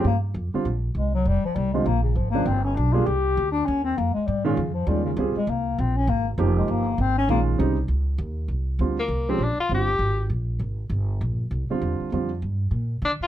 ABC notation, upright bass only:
X:1
M:4/4
L:1/8
Q:"Swing" 1/4=199
K:Ebmix
V:1 name="Upright bass" clef=bass
G,,2 F,, z B,,,2 C,,2 | F,,, z C,,2 B,,,2 A,,,2 | G,,,2 =B,,,2 C,,2 =D,,2 | E,,2 F,, z A,,2 F,,2 |
E,,2 D,, z C,,2 B,,,2 | A,,,2 F,,,2 G,,,2 A,,,2 | B,,,2 C,,2 D,,2 E,,2 | C,,2 =D,,2 C,,2 B,,, z |
G,,,2 A,,,2 B,,,2 A,,,2 | G,,,2 B,,,2 C,, z =E,, z | F,,2 G,,2 B,,2 =D, z |]